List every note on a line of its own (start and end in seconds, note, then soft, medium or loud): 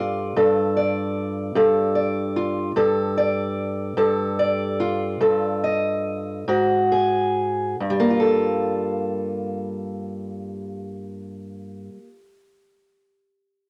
0.00 0.35 G2 medium
0.00 2.35 F4 soft
0.00 0.36 A4 soft
0.00 0.76 D5 soft
0.36 1.54 G2 medium
0.36 1.55 A4 soft
0.77 1.94 D5 soft
1.55 2.75 G2 medium
1.55 2.71 A4 medium
1.95 2.70 D5 soft
2.36 2.71 F4 soft
2.76 3.96 G2 medium
2.76 3.96 A4 medium
3.18 4.38 D5 medium
3.97 5.19 G2 medium
3.97 5.20 A4 medium
4.39 5.63 D5 medium
4.80 6.44 F4 medium
5.21 6.47 G2 medium
5.21 6.43 A4 medium
5.64 6.43 D#5 medium
6.48 7.74 G#2 medium
6.48 7.75 F#4 medium
6.92 7.75 G#4 medium
7.80 11.88 G2 medium
7.90 11.98 G3 medium
8.00 12.07 A#3 medium
8.10 12.18 F4 medium
8.20 12.28 A4 medium